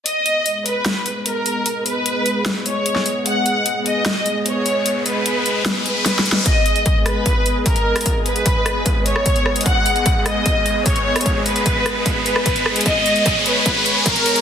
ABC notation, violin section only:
X:1
M:4/4
L:1/8
Q:1/4=150
K:G#m
V:1 name="Violin section"
d3 B3 A2- | A B4 c3 | f3 d3 c2- | c B4 B3 |
d3 B3 A2- | A B4 c3 | f3 d3 c2- | c B4 B3 |
d3 B3 A2 |]